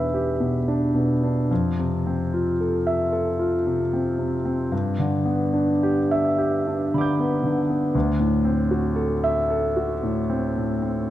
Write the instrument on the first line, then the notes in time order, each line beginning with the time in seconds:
grand piano
Already playing: E2 B2 D4 G4 B4 E5
0.14 G4
0.40 B2
0.68 D4
0.95 B2
1.23 D4
1.51 F2
1.79 C3
2.07 C4
2.34 F4
2.61 A4
2.87 E5
3.12 A4
3.39 F4
3.66 C3
3.93 C4
4.19 C3
4.45 C4
4.72 G2
4.99 D3
5.25 B3
5.53 D4
5.83 G4
6.11 E5
6.38 G4
6.67 D4
6.94 D3 B5 D6
7.01 G6
7.19 B3
7.43 D3
7.70 B3
7.95 D2
8.19 A2
8.45 C4
8.71 F#4
8.96 A4
9.24 E5
9.50 A4
9.77 F#4
10.03 A2
10.30 C4
10.57 A2
10.82 C4